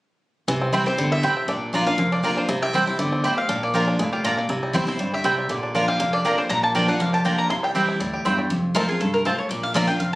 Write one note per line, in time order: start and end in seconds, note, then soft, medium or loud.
0.48 0.83 C2 loud
0.48 0.96 C3 medium
0.48 0.84 E3 medium
0.62 0.96 C4 medium
0.72 0.86 E3 medium
0.72 0.86 G3 medium
0.72 0.83 C4 medium
0.72 0.86 C4 medium
0.72 1.09 E4 medium
0.72 0.83 E4 medium
0.72 0.85 E4 medium
0.72 0.83 C5 medium
0.72 0.83 G5 medium
0.86 0.98 C4 medium
0.86 0.98 E4 medium
0.86 1.21 G4 medium
0.86 1.10 C5 medium
0.98 1.19 G1 medium
0.98 1.22 D3 medium
0.98 1.34 G3 medium
1.12 1.46 E4 medium
1.12 1.46 E5 loud
1.23 1.45 A1 medium
1.23 1.47 C3 medium
1.23 1.33 C4 medium
1.23 1.33 E4 loud
1.23 1.49 G4 medium
1.23 1.33 C5 medium
1.23 1.33 G5 medium
1.37 1.49 C4 medium
1.48 1.84 A#1 medium
1.48 1.96 A#2 medium
1.48 1.73 D4 medium
1.48 1.84 D5 medium
1.73 1.86 F3 medium
1.73 1.83 A#3 medium
1.73 1.87 A#3 medium
1.73 1.86 D4 medium
1.73 1.87 D4 medium
1.73 1.84 F4 medium
1.73 1.85 F4 medium
1.73 1.84 D5 medium
1.73 1.84 A#5 medium
1.86 2.11 D4 medium
1.86 1.99 D4 medium
1.86 1.98 F4 medium
1.86 2.10 F5 loud
1.98 2.34 F1 medium
1.98 2.46 F2 medium
1.98 2.35 A#3 medium
2.12 2.36 D4 medium
2.12 2.36 D5 medium
2.23 2.47 F3 soft
2.23 2.48 A#3 medium
2.23 2.33 A#3 medium
2.23 2.48 D4 medium
2.23 2.34 F4 medium
2.23 2.48 F4 medium
2.23 2.49 G4 medium
2.23 2.34 D5 medium
2.23 2.34 A#5 medium
2.37 2.49 D4 medium
2.37 2.61 C5 medium
2.49 2.84 C2 medium
2.49 2.97 C3 medium
2.49 2.85 E4 medium
2.62 2.97 G4 medium
2.62 2.97 E5 loud
2.73 2.86 E3 medium
2.73 2.87 G3 medium
2.73 3.10 C4 medium
2.73 2.84 C4 medium
2.73 2.87 C4 medium
2.73 2.84 E4 medium
2.73 2.86 E4 medium
2.73 2.84 C5 medium
2.73 2.84 G5 loud
2.87 2.99 C4 medium
2.87 2.99 E4 medium
2.87 3.22 E4 medium
2.99 3.34 G1 medium
2.99 3.23 D3 medium
2.99 3.35 G3 medium
2.99 3.35 D5 medium
3.12 3.36 C4 medium
3.24 3.48 A2 medium
3.24 3.34 C4 medium
3.24 3.34 E4 medium
3.24 3.49 G4 medium
3.24 3.34 C5 loud
3.24 3.34 G5 medium
3.37 3.49 C4 medium
3.37 3.61 F5 medium
3.49 3.85 A#1 medium
3.49 3.97 A#2 medium
3.49 3.85 D4 medium
3.63 3.97 A#3 medium
3.63 3.86 D5 medium
3.74 3.98 F3 medium
3.74 3.84 A#3 medium
3.74 3.98 A#3 medium
3.74 3.99 D4 medium
3.74 3.84 F4 medium
3.74 3.99 F4 medium
3.74 4.10 G4 medium
3.74 3.84 D5 medium
3.74 3.84 A#5 medium
3.88 4.22 D4 medium
3.99 4.34 F1 medium
3.99 4.23 A2 medium
3.99 4.05 G#3 medium
4.05 4.24 A#3 medium
4.13 4.24 F4 medium
4.13 4.47 G4 medium
4.24 4.48 A#2 medium
4.24 4.34 A#3 medium
4.24 4.49 D4 medium
4.24 4.34 F4 medium
4.24 4.38 A#4 medium
4.24 4.34 D5 medium
4.24 4.34 A#5 medium
4.38 4.49 A#3 medium
4.38 4.50 D5 medium
4.49 4.67 C2 medium
4.49 4.97 C3 medium
4.49 4.85 E4 medium
4.63 4.97 G3 medium
4.73 4.96 E2 medium
4.73 4.87 E3 medium
4.73 4.87 G3 medium
4.73 4.84 C4 medium
4.73 4.88 C4 medium
4.73 4.84 E4 medium
4.73 4.86 E4 medium
4.73 5.10 G4 medium
4.73 4.84 C5 medium
4.73 4.84 G5 medium
4.87 4.99 C4 medium
4.87 4.99 E4 medium
4.87 5.22 E4 medium
4.87 5.12 C5 medium
4.99 5.21 D2 medium
4.99 5.23 G2 medium
4.99 5.36 G3 medium
5.14 5.48 G4 medium
5.14 5.48 E5 loud
5.24 5.46 C2 medium
5.24 5.48 C3 medium
5.24 5.34 C4 medium
5.24 5.34 E4 medium
5.24 5.50 E4 medium
5.24 5.34 C5 loud
5.24 5.34 G5 loud
5.38 5.50 G3 medium
5.49 5.85 A#1 loud
5.49 5.97 A#2 medium
5.49 5.86 D3 medium
5.49 5.86 D5 medium
5.63 5.74 D4 medium
5.75 5.99 F3 medium
5.75 5.84 A#3 medium
5.75 5.99 A#3 medium
5.75 6.11 D4 medium
5.75 5.99 D4 medium
5.75 5.84 F4 loud
5.75 5.99 F4 medium
5.75 5.85 D5 medium
5.75 5.85 A#5 loud
5.88 6.23 G4 medium
5.88 6.11 F5 loud
6.00 6.35 F1 medium
6.00 6.47 F2 medium
6.00 6.36 A#3 medium
6.13 6.37 D4 medium
6.13 6.36 D5 loud
6.25 6.49 F3 medium
6.25 6.34 A#3 loud
6.25 6.49 A#3 medium
6.25 6.49 D4 medium
6.25 6.34 F4 medium
6.25 6.50 F4 medium
6.25 6.61 G4 medium
6.25 6.35 D5 loud
6.25 6.35 A#5 loud
6.38 6.49 D4 medium
6.38 6.49 C5 medium
6.49 6.85 A#1 medium
6.49 6.98 A#2 medium
6.49 6.86 D4 medium
6.49 6.63 A#5 loud
6.63 6.98 A#3 medium
6.63 6.75 A5 loud
6.75 6.88 F3 medium
6.75 6.84 A#3 medium
6.75 6.88 A#3 medium
6.75 6.88 D4 medium
6.75 6.85 F4 medium
6.75 6.87 F4 medium
6.75 7.11 G4 medium
6.75 6.85 D5 loud
6.75 6.88 G5 medium
6.75 6.85 A#5 loud
6.88 7.23 D4 medium
6.88 7.00 D4 soft
6.88 6.99 F4 medium
6.88 7.00 F#5 medium
7.00 7.35 F1 medium
7.00 7.48 F2 medium
7.00 7.36 A#3 medium
7.00 7.14 F5 medium
7.13 7.48 G4 medium
7.13 7.25 A5 loud
7.25 7.49 F3 medium
7.25 7.34 A#3 medium
7.25 7.49 A#3 medium
7.25 7.49 D4 medium
7.25 7.35 F4 loud
7.25 7.50 F4 medium
7.25 7.35 D5 medium
7.25 7.38 G5 medium
7.25 7.35 A#5 loud
7.38 7.50 A#3 medium
7.38 7.50 A#5 loud
7.50 7.85 C2 medium
7.50 7.98 C3 medium
7.50 7.86 E4 medium
7.50 7.63 C6 loud
7.63 7.98 G3 medium
7.63 7.71 G5 loud
7.75 7.99 E3 medium
7.75 7.99 G3 medium
7.75 7.85 C4 medium
7.75 7.99 C4 medium
7.75 7.85 E4 medium
7.75 8.00 E4 medium
7.75 8.11 G4 medium
7.75 7.85 C5 medium
7.75 7.85 G5 medium
7.88 8.23 E4 medium
8.00 8.21 D2 medium
8.00 8.24 A2 medium
8.00 8.36 G3 medium
8.13 8.48 G4 medium
8.25 8.46 E2 medium
8.25 8.49 G2 medium
8.25 8.35 C4 medium
8.25 8.35 E4 medium
8.25 8.50 E4 medium
8.25 8.35 C5 medium
8.25 8.35 G5 loud
8.38 8.50 G3 medium
8.50 8.85 F1 medium
8.50 8.98 F2 medium
8.75 8.88 F3 loud
8.75 8.88 A3 medium
8.75 8.82 A3 medium
8.75 8.85 C4 medium
8.75 8.88 C4 medium
8.75 8.82 C4 medium
8.75 8.85 F4 medium
8.75 8.88 F4 medium
8.75 8.82 F4 medium
8.75 8.88 A#4 medium
8.75 8.85 C5 medium
8.75 8.85 A5 medium
8.89 9.01 C4 medium
8.89 9.00 F4 medium
8.89 9.00 G#4 medium
9.00 9.35 C2 medium
9.00 9.24 G2 medium
9.00 9.13 A4 medium
9.14 9.25 A#4 medium
9.25 9.49 A2 medium
9.25 9.31 A3 medium
9.25 9.35 C4 medium
9.25 9.32 C4 medium
9.25 9.35 F4 medium
9.25 9.32 F4 medium
9.25 9.35 C5 loud
9.25 9.38 C5 medium
9.25 9.35 A5 loud
9.38 9.49 C#5 medium
9.49 9.85 A#1 medium
9.49 9.98 A#2 medium
9.49 9.63 D5 medium
9.63 9.74 F5 loud
9.74 9.88 F3 medium
9.74 9.85 A#3 medium
9.74 9.88 A#3 medium
9.74 9.81 A#3 medium
9.74 9.88 D4 medium
9.74 9.78 D4 medium
9.74 9.85 F4 medium
9.74 9.87 F4 loud
9.74 9.85 D5 medium
9.74 9.87 E5 medium
9.74 9.85 A#5 loud
9.87 10.01 D4 medium
9.87 10.00 F4 medium
9.87 9.99 G5 loud
10.00 10.15 F1 medium
10.00 10.15 F2 medium
10.00 10.13 F5 medium